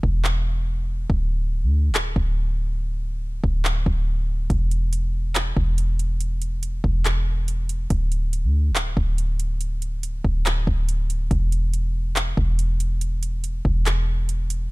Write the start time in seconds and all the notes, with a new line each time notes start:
0.03 E1, kick
0.25 clap
1.10 D1, kick
1.63 D2
1.89 D1
1.95 clap
2.16 D1, kick
3.44 D1, kick
3.65 clap
3.86 D1, kick
4.50 E1, kick, closed hi-hat
4.71 closed hi-hat
4.93 closed hi-hat
5.35 clap, closed hi-hat
5.57 E1, kick
5.78 closed hi-hat
5.99 closed hi-hat
6.20 closed hi-hat
6.42 closed hi-hat
6.63 closed hi-hat
6.84 E1, kick
7.05 clap, closed hi-hat
7.48 closed hi-hat
7.69 closed hi-hat
7.90 D1, kick, closed hi-hat
8.12 closed hi-hat
8.33 closed hi-hat
8.44 D2
8.70 D1
8.76 clap, closed hi-hat
8.97 D1, kick
9.18 closed hi-hat
9.40 closed hi-hat
9.61 closed hi-hat
9.82 closed hi-hat
10.03 closed hi-hat
10.25 D1, kick
10.46 clap, closed hi-hat
10.67 D1, kick
10.89 closed hi-hat
11.10 closed hi-hat
11.31 E1, kick, closed hi-hat
11.52 closed hi-hat
11.74 closed hi-hat
12.16 clap, closed hi-hat
12.37 E1, kick
12.59 closed hi-hat
12.80 closed hi-hat
13.01 closed hi-hat
13.23 closed hi-hat
13.44 closed hi-hat
13.65 E1, kick
13.86 clap, closed hi-hat
14.29 closed hi-hat
14.50 closed hi-hat